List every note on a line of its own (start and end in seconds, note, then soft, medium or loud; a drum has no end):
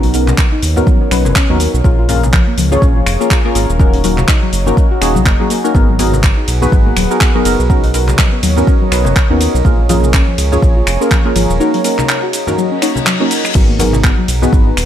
0.00 0.34 B1 medium
0.00 0.11 F#3 medium
0.00 0.11 B3 medium
0.00 0.11 C#4 medium
0.00 0.11 D#4 medium
0.00 0.11 F#4 medium
0.00 0.11 A#4 loud
0.00 1.83 A#4 medium
0.00 1.83 C#5 medium
0.00 1.83 D#5 medium
0.00 open hi-hat medium
0.00 downlifter medium
0.14 0.73 B3 medium
0.14 0.73 C#4 medium
0.14 0.73 D#4 medium
0.14 0.73 F#4 medium
0.14 0.73 A#4 medium
0.14 open hi-hat loud
0.14 shaker medium
0.28 clap soft
0.28 high conga medium
0.28 shaker soft
0.38 kick loud
0.38 clap loud
0.38 shaker soft
0.52 0.60 D#4 medium
0.63 0.82 D#2 medium
0.63 open hi-hat loud
0.63 shaker medium
0.76 1.09 B3 medium
0.76 1.09 C#4 medium
0.76 1.09 D#4 medium
0.76 1.09 F#4 medium
0.76 1.09 A#4 loud
0.76 low conga medium
0.76 shaker soft
0.87 0.94 F#3 medium
0.87 kick loud
0.87 shaker soft
1.01 1.06 B3 medium
1.11 1.27 B1 medium
1.11 1.18 F#3 medium
1.11 1.29 B3 medium
1.11 1.29 C#4 medium
1.11 1.29 D#4 medium
1.11 1.29 F#4 medium
1.11 1.29 B4 medium
1.11 finger snap medium
1.11 open hi-hat loud
1.11 shaker medium
1.25 1.33 F#1 medium
1.25 high conga loud
1.25 shaker soft
1.36 1.46 C#4 loud
1.36 kick loud
1.36 clap loud
1.36 shaker soft
1.49 1.68 D#2 medium
1.49 1.57 F#3 medium
1.49 1.76 B3 loud
1.49 1.76 C#4 medium
1.49 1.76 D#4 medium
1.49 1.76 F#4 medium
1.49 1.76 A#4 loud
1.60 open hi-hat loud
1.60 shaker medium
1.74 1.82 B1 loud
1.74 shaker soft
1.84 2.42 A#1 loud
1.84 2.02 A#3 medium
1.84 2.02 C#4 medium
1.84 2.02 F4 medium
1.84 3.78 G#4 medium
1.84 2.02 G#4 medium
1.84 2.02 A#4 medium
1.84 5.71 C#5 medium
1.84 3.78 F5 medium
1.84 7.66 A#5 medium
1.84 kick loud
1.84 shaker soft
1.99 2.06 F4 medium
2.09 2.27 A#3 medium
2.09 2.27 C#4 medium
2.09 2.27 F4 medium
2.09 2.27 G#4 medium
2.09 2.27 A#4 loud
2.09 open hi-hat loud
2.09 low conga medium
2.09 shaker medium
2.23 high conga medium
2.23 shaker soft
2.33 2.40 F3 medium
2.33 kick loud
2.33 clap loud
2.33 shaker soft
2.47 2.52 A#3 medium
2.58 2.77 C#2 medium
2.58 2.65 F3 medium
2.58 open hi-hat loud
2.58 shaker medium
2.71 3.17 A#3 loud
2.71 3.17 C#4 medium
2.71 3.17 F4 medium
2.71 3.17 G#4 medium
2.71 3.17 C#5 loud
2.71 low conga medium
2.71 shaker soft
2.82 3.02 A#1 loud
2.82 2.92 C#4 loud
2.82 kick loud
2.82 shaker soft
2.96 3.04 F3 medium
3.06 3.17 F1 loud
3.06 finger snap medium
3.06 open hi-hat loud
3.06 shaker medium
3.20 3.41 A#3 medium
3.20 3.41 C#4 medium
3.20 3.41 F4 medium
3.20 3.41 G#4 medium
3.20 3.41 A#4 medium
3.20 shaker soft
3.31 kick loud
3.31 clap loud
3.31 shaker soft
3.45 3.53 A#3 medium
3.45 3.53 C#4 medium
3.45 3.53 F4 medium
3.45 3.52 F4 medium
3.45 3.53 G#4 medium
3.45 3.53 A#4 loud
3.55 3.66 G#1 loud
3.55 3.76 A#3 medium
3.55 3.76 C#4 medium
3.55 3.76 F4 medium
3.55 3.76 G#4 medium
3.55 3.76 A#4 loud
3.55 open hi-hat loud
3.55 shaker medium
3.69 4.25 D#1 medium
3.69 shaker soft
3.79 3.86 F#3 medium
3.79 4.01 A#3 medium
3.79 4.01 C#4 medium
3.79 4.01 D#4 medium
3.79 5.73 F#4 medium
3.79 4.01 F#4 medium
3.79 4.02 A#4 loud
3.79 5.73 D#5 medium
3.79 kick loud
3.79 shaker soft
3.94 3.99 C#4 medium
3.94 open hi-hat medium
4.04 4.11 F#3 medium
4.04 4.63 A#3 medium
4.04 4.63 C#4 medium
4.04 4.63 D#4 medium
4.04 4.63 F#4 medium
4.04 4.64 A#4 medium
4.04 open hi-hat loud
4.04 shaker medium
4.18 clap soft
4.18 high conga medium
4.18 shaker soft
4.28 4.39 D#4 loud
4.28 kick loud
4.28 clap loud
4.28 shaker soft
4.42 4.50 F#3 medium
4.53 4.72 F#1 medium
4.53 open hi-hat loud
4.53 shaker medium
4.66 4.99 A#3 medium
4.66 4.99 C#4 medium
4.66 4.99 D#4 medium
4.66 4.99 F#4 medium
4.66 4.99 A#4 loud
4.66 low conga medium
4.66 shaker soft
4.77 kick loud
4.77 shaker soft
4.91 4.99 F#4 medium
5.01 5.17 D#1 medium
5.01 5.19 A#3 loud
5.01 5.19 C#4 medium
5.01 5.19 D#4 medium
5.01 5.19 F#4 medium
5.01 5.19 G#4 loud
5.01 finger snap medium
5.01 open hi-hat loud
5.01 shaker medium
5.15 5.27 A#1 medium
5.15 5.23 F#3 loud
5.15 high conga medium
5.15 shaker soft
5.26 5.37 F#1 medium
5.26 5.36 A#3 medium
5.26 kick loud
5.26 clap loud
5.26 shaker soft
5.40 5.45 F#3 medium
5.40 5.60 A#3 medium
5.40 5.60 C#4 medium
5.40 5.60 D#4 medium
5.40 5.60 F#4 medium
5.40 5.60 G#4 medium
5.50 5.57 A#3 medium
5.50 open hi-hat loud
5.50 shaker medium
5.64 5.72 A#3 medium
5.64 5.72 C#4 medium
5.64 5.67 D#4 medium
5.64 5.72 D#4 medium
5.64 5.72 F#4 medium
5.64 5.72 A#4 loud
5.64 shaker soft
5.75 6.32 G#1 loud
5.75 5.92 B3 medium
5.75 5.85 B3 loud
5.75 5.92 D#4 medium
5.75 5.93 F#4 medium
5.75 7.68 G#4 medium
5.75 5.93 G#4 medium
5.75 5.93 A#4 medium
5.75 7.68 B4 medium
5.75 7.68 F#5 medium
5.75 kick loud
5.75 shaker soft
5.89 5.96 F#3 medium
5.99 6.17 B3 medium
5.99 6.17 D#4 medium
5.99 6.17 F#4 medium
5.99 6.17 G#4 medium
5.99 6.17 A#4 loud
5.99 open hi-hat loud
5.99 ride medium
5.99 low conga medium
5.99 shaker medium
6.13 high conga medium
6.13 shaker soft
6.23 kick loud
6.23 clap loud
6.23 shaker soft
6.37 6.45 D#4 medium
6.48 6.67 B1 medium
6.48 open hi-hat loud
6.48 ride medium
6.48 shaker medium
6.62 7.07 B3 loud
6.62 7.07 D#4 medium
6.62 7.07 F#4 medium
6.62 7.07 G#4 medium
6.62 7.07 B4 loud
6.62 low conga medium
6.62 shaker soft
6.72 6.92 G#1 loud
6.72 6.79 F#3 medium
6.72 kick loud
6.72 shaker soft
6.86 6.91 A#3 medium
6.97 7.07 D#1 loud
6.97 7.03 F#3 medium
6.97 finger snap medium
6.97 open hi-hat loud
6.97 ride medium
6.97 shaker medium
7.10 7.32 B3 medium
7.10 7.32 D#4 medium
7.10 7.32 F#4 medium
7.10 7.32 G#4 medium
7.10 7.32 A#4 medium
7.10 shaker soft
7.21 7.31 B3 loud
7.21 kick loud
7.21 clap loud
7.21 shaker soft
7.35 7.43 F#3 medium
7.35 7.43 B3 loud
7.35 7.43 D#4 medium
7.35 7.43 F#4 medium
7.35 7.43 G#4 medium
7.35 7.43 A#4 loud
7.45 7.56 F#1 medium
7.45 7.67 B3 medium
7.45 7.67 D#4 medium
7.45 7.67 F#4 medium
7.45 7.67 G#4 medium
7.45 7.67 A#4 loud
7.45 open hi-hat loud
7.45 ride medium
7.45 shaker medium
7.59 8.15 B1 medium
7.59 shaker soft
7.70 7.92 B3 medium
7.70 7.92 C#4 medium
7.70 7.92 D#4 medium
7.70 7.92 F#4 medium
7.70 7.92 A#4 loud
7.70 9.63 A#4 medium
7.70 9.63 C#5 medium
7.70 9.63 D#5 medium
7.70 kick loud
7.70 shaker soft
7.84 7.91 D#4 medium
7.84 open hi-hat medium
7.94 8.53 B3 medium
7.94 8.54 C#4 medium
7.94 8.54 D#4 medium
7.94 8.54 F#4 medium
7.94 8.54 A#4 medium
7.94 open hi-hat loud
7.94 ride medium
7.94 shaker medium
8.08 clap soft
8.08 high conga loud
8.08 shaker soft
8.19 8.25 F#3 medium
8.19 kick loud
8.19 clap loud
8.19 shaker soft
8.33 8.38 B3 medium
8.43 8.63 D#2 medium
8.43 8.50 F#3 medium
8.43 open hi-hat loud
8.43 ride medium
8.43 shaker medium
8.56 8.89 B3 medium
8.56 8.89 C#4 medium
8.56 8.89 D#4 medium
8.56 8.89 F#4 medium
8.56 8.89 A#4 loud
8.56 low conga medium
8.56 shaker soft
8.67 8.78 C#4 loud
8.67 kick loud
8.67 shaker soft
8.81 8.89 F#3 medium
8.92 9.07 B1 medium
8.92 9.10 B3 medium
8.92 9.10 C#4 medium
8.92 9.10 D#4 medium
8.92 9.10 F#4 medium
8.92 9.10 B4 medium
8.92 finger snap medium
8.92 open hi-hat loud
8.92 ride medium
8.92 shaker medium
9.05 9.14 F#1 medium
9.05 high conga loud
9.05 shaker soft
9.16 kick loud
9.16 clap loud
9.16 shaker soft
9.30 9.48 D#2 loud
9.30 9.57 B3 medium
9.30 9.57 C#4 medium
9.30 9.38 D#4 medium
9.30 9.57 D#4 medium
9.30 9.57 F#4 medium
9.30 9.57 A#4 loud
9.41 open hi-hat loud
9.41 ride medium
9.41 shaker medium
9.54 9.63 B1 loud
9.54 shaker soft
9.65 10.23 A#1 loud
9.65 9.72 F3 medium
9.65 9.83 A#3 medium
9.65 9.83 C#4 medium
9.65 9.83 F4 medium
9.65 11.58 G#4 medium
9.65 9.83 G#4 medium
9.65 9.83 A#4 medium
9.65 13.51 C#5 medium
9.65 11.58 F5 medium
9.65 13.51 A#5 medium
9.65 kick loud
9.65 shaker soft
9.79 9.84 A#3 medium
9.89 9.96 F3 medium
9.89 10.07 A#3 medium
9.89 10.07 C#4 medium
9.89 10.07 F4 medium
9.89 10.07 G#4 medium
9.89 10.07 A#4 loud
9.89 open hi-hat loud
9.89 ride medium
9.89 low conga medium
9.89 shaker medium
10.03 high conga medium
10.03 shaker soft
10.14 10.24 C#4 loud
10.14 kick loud
10.14 clap loud
10.14 shaker soft
10.28 10.35 F3 medium
10.38 10.58 C#2 medium
10.38 open hi-hat loud
10.38 ride medium
10.38 shaker medium
10.52 10.97 A#3 loud
10.52 10.97 C#4 medium
10.52 10.98 F4 medium
10.52 10.98 G#4 medium
10.52 10.98 C#5 loud
10.52 low conga medium
10.52 shaker soft
10.62 10.82 A#1 loud
10.62 kick loud
10.62 shaker soft
10.76 10.84 F4 medium
10.87 10.98 F1 loud
10.87 finger snap medium
10.87 open hi-hat loud
10.87 ride medium
10.87 shaker medium
11.01 11.22 A#3 medium
11.01 11.22 C#4 medium
11.01 11.22 F4 medium
11.01 11.22 G#4 medium
11.01 11.22 A#4 medium
11.01 shaker soft
11.11 11.18 F3 medium
11.11 kick loud
11.11 clap loud
11.11 shaker soft
11.25 11.33 A#3 loud
11.25 11.30 A#3 medium
11.25 11.33 C#4 medium
11.25 11.33 F4 medium
11.25 11.33 G#4 medium
11.25 11.33 A#4 loud
11.36 11.46 G#1 loud
11.36 11.43 F3 medium
11.36 11.57 A#3 medium
11.36 11.57 C#4 medium
11.36 11.57 F4 medium
11.36 11.57 G#4 medium
11.36 11.57 A#4 loud
11.36 open hi-hat loud
11.36 ride medium
11.36 shaker medium
11.50 11.60 D#1 medium
11.50 shaker soft
11.60 11.82 A#3 medium
11.60 11.82 C#4 medium
11.60 11.70 D#4 loud
11.60 11.82 D#4 medium
11.60 11.82 F#4 medium
11.60 13.53 F#4 medium
11.60 11.82 A#4 loud
11.60 13.53 D#5 medium
11.60 shaker soft
11.74 11.82 F#3 medium
11.74 open hi-hat medium
11.84 12.44 A#3 medium
11.84 12.44 C#4 medium
11.84 12.44 D#4 medium
11.84 12.44 F#4 medium
11.84 12.44 A#4 medium
11.84 open hi-hat loud
11.84 ride medium
11.84 shaker medium
11.99 clap soft
11.99 high conga medium
11.99 shaker soft
12.09 clap loud
12.09 shaker soft
12.23 12.30 F#4 medium
12.33 open hi-hat loud
12.33 ride medium
12.33 shaker medium
12.47 12.79 A#3 medium
12.47 12.79 C#4 medium
12.47 12.79 D#4 medium
12.47 12.80 F#4 medium
12.47 12.80 A#4 loud
12.47 low conga medium
12.47 shaker soft
12.57 12.64 F#3 medium
12.57 reverse cymbal medium
12.57 shaker soft
12.72 12.77 C#4 medium
12.82 13.00 A#3 medium
12.82 13.00 C#4 medium
12.82 13.00 D#4 medium
12.82 12.86 D#4 loud
12.82 13.00 F#4 medium
12.82 13.00 C#5 medium
12.82 finger snap medium
12.82 open hi-hat loud
12.82 ride medium
12.82 shaker medium
12.96 high conga medium
12.96 shaker soft
13.06 13.13 F#3 medium
13.06 clap loud
13.06 shaker soft
13.20 13.47 A#3 medium
13.20 13.47 C#4 medium
13.20 13.25 C#4 loud
13.20 13.47 D#4 medium
13.20 13.47 F#4 medium
13.20 13.47 A#4 loud
13.31 open hi-hat loud
13.31 ride medium
13.31 shaker medium
13.45 finger snap medium
13.45 shaker soft
13.55 14.13 G#1 loud
13.55 13.62 F#3 medium
13.55 13.73 B3 medium
13.55 13.73 D#4 medium
13.55 13.73 F#4 medium
13.55 14.85 G#4 medium
13.55 13.73 G#4 medium
13.55 13.73 A#4 medium
13.55 14.85 B4 medium
13.55 14.85 F#5 medium
13.55 14.85 A#5 medium
13.55 kick loud
13.55 crash medium
13.55 shaker soft
13.69 13.74 A#3 medium
13.79 13.86 F#3 medium
13.79 13.97 B3 medium
13.79 13.97 D#4 medium
13.79 13.97 F#4 medium
13.79 13.97 G#4 medium
13.79 13.97 A#4 loud
13.79 open hi-hat loud
13.79 ride medium
13.79 low conga medium
13.79 shaker medium
13.93 high conga loud
13.93 shaker soft
14.04 14.14 B3 loud
14.04 kick loud
14.04 clap loud
14.04 shaker soft
14.18 14.26 F#3 medium
14.28 14.48 B1 medium
14.28 open hi-hat loud
14.28 ride medium
14.28 shaker medium
14.42 14.85 B3 loud
14.42 14.85 D#4 medium
14.42 14.85 F#4 medium
14.42 14.85 G#4 medium
14.42 14.85 B4 loud
14.42 low conga medium
14.42 shaker soft
14.53 14.72 G#1 loud
14.53 kick loud
14.53 shaker soft
14.67 14.74 D#4 medium
14.77 14.85 D#1 loud
14.77 finger snap medium
14.77 open hi-hat loud
14.77 ride medium
14.77 shaker medium